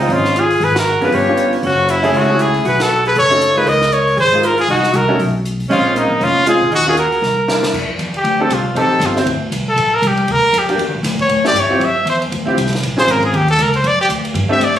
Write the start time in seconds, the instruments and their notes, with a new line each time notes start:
Already playing: alto saxophone C4, trumpet D#4
0.00 upright piano G#3 C4 D#4 F4
0.09 upright bass G#1, alto saxophone C#4, open hi-hat
0.13 trumpet F4
0.25 snare
0.36 alto saxophone F4, trumpet G#4, closed hi-hat
0.51 open hi-hat
0.60 upright bass G#1, alto saxophone G#4, open hi-hat
0.64 trumpet B4
0.75 alto saxophone F#4, trumpet A#4, snare, ride
1.00 upright bass F#1, upright piano B3 C#4 D4 F4, alto saxophone G#4, trumpet B4, open hi-hat
1.12 upright bass G1, alto saxophone G4, trumpet C#5, open hi-hat
1.27 upright piano B3 C#4 D4 F4
1.37 closed hi-hat
1.53 open hi-hat
1.63 upright bass F#1, alto saxophone C#4, trumpet F#4, open hi-hat
1.89 alto saxophone C#4, trumpet E4, closed hi-hat
2.03 upright piano A3 C#4 E4 G#4, open hi-hat
2.13 upright bass C#2, alto saxophone C#4, trumpet F#4, open hi-hat
2.28 upright piano A3 C#4 E4 G#4
2.38 alto saxophone E4, trumpet G#4, closed hi-hat
2.54 open hi-hat
2.65 upright bass B1, alto saxophone F#4, trumpet B4, open hi-hat
2.80 alto saxophone F#4, trumpet A4, snare, ride
3.05 alto saxophone G#4, trumpet B4, open hi-hat
3.15 upright bass F#1, alto saxophone A4, trumpet C#5, open hi-hat
3.30 upright piano A3 C#4 D#4 F#4
3.41 closed hi-hat
3.55 upright piano G#3 A#3 D#4 F4, alto saxophone G#4, trumpet B4, open hi-hat
3.66 upright bass C#2, alto saxophone A#4, trumpet D#5, open hi-hat
3.81 snare
3.92 alto saxophone A#4, trumpet C#5, closed hi-hat
4.07 open hi-hat
4.17 upright bass G#1, alto saxophone G#4, trumpet C5, open hi-hat
4.32 upright piano G#3 A#3 D#4 F4
4.43 alto saxophone F4, trumpet A#4, closed hi-hat
4.58 alto saxophone F4, trumpet G#4, open hi-hat
4.68 upright bass C2, alto saxophone D#4, trumpet F#4, open hi-hat
4.83 snare
4.93 upright bass C2, alto saxophone F#4, trumpet A#4, closed hi-hat
5.09 upright piano A3 C#4 D#4 F#4
5.19 upright bass B1, open hi-hat
5.45 closed hi-hat
5.60 open hi-hat
5.69 upright bass A#1, upright piano G#3 C4 C#4 F4, alto saxophone C#4, trumpet F4, open hi-hat
5.96 alto saxophone A#3, trumpet D#4, closed hi-hat
6.10 upright bass A1
6.21 upright bass F1, alto saxophone C#4, trumpet F4, open hi-hat
6.46 upright piano G#3 C4 C#4 F4, alto saxophone F4, trumpet G#4, closed hi-hat
6.61 upright bass A#2
6.71 upright bass D#2, alto saxophone D#4, trumpet F#4, open hi-hat
6.86 upright piano A#3 C#4 F4 F#4, alto saxophone F4, trumpet G#4
6.97 alto saxophone F#4, trumpet A#4, closed hi-hat
7.12 muted upright bass stroke, open hi-hat
7.22 upright bass C2, snare
7.48 upright piano A#3 D4 E4 A#4, snare
7.63 snare
7.73 upright bass F2, kick, crash
7.99 upright bass E2, hi-hat pedal, ride
8.14 trumpet G4, muted upright bass stroke, ride
8.24 upright bass D2, ride
8.39 upright piano C4 D4 G4 A4, trumpet A4
8.50 upright bass C2, trumpet F4, hi-hat pedal, ride
8.75 upright bass A1, upright piano C4 D#4 G4 A4, ride
8.79 trumpet A4
9.00 upright bass G1, hi-hat pedal, ride
9.06 trumpet F4
9.16 upright piano C4 E4 F#4 C5, snare
9.26 upright bass D2, ride
9.52 upright bass C2, hi-hat pedal, ride
9.69 trumpet A4
9.76 upright bass A#1, ride
9.95 trumpet A#4
10.02 upright bass C2, hi-hat pedal, ride
10.07 trumpet G4
10.17 ride
10.28 upright bass D2, trumpet A#4, ride
10.53 upright bass F2, hi-hat pedal, ride
10.59 trumpet G4
10.69 upright piano A#3 D4 F#4 G4, ride
10.78 upright bass E2, ride
10.86 upright bass D2
10.95 upright bass A#1
11.03 upright bass D2, snare, hi-hat pedal, ride
11.19 trumpet C#5, kick, ride
11.29 upright bass A2, ride
11.44 upright piano A3 C#4 E4 G4, trumpet D5, snare
11.54 upright bass G2, hi-hat pedal, ride
11.60 trumpet C#5
11.69 upright piano C4 E4 F4 G4, kick
11.80 upright bass F2, ride
11.85 trumpet E5
12.05 upright bass E2, hi-hat pedal, ride
12.10 trumpet C5
12.22 ride
12.32 upright bass D2, ride
12.46 upright piano C4 E4 F4 G4, kick
12.58 upright bass C2, hi-hat pedal, ride
12.66 snare
12.73 snare, ride
12.83 upright bass A#1, ride
12.97 upright piano C4 C#4 F4 G#4, trumpet C5, snare
13.08 upright bass G#1, trumpet A#4, hi-hat pedal, ride
13.23 trumpet G#4, ride
13.33 upright bass D#2, trumpet G4, ride
13.48 trumpet A4, ride
13.58 upright bass C#2, hi-hat pedal, ride
13.62 trumpet A#4
13.74 trumpet C5, ride
13.84 upright bass F2, trumpet D5, ride
13.98 trumpet G4, muted upright bass stroke
14.09 upright bass D2, hi-hat pedal, ride
14.25 ride
14.34 upright bass G2, ride
14.49 upright piano A3 C4 D4 G4, trumpet E5
14.60 upright bass A2, hi-hat pedal, ride
14.64 trumpet D5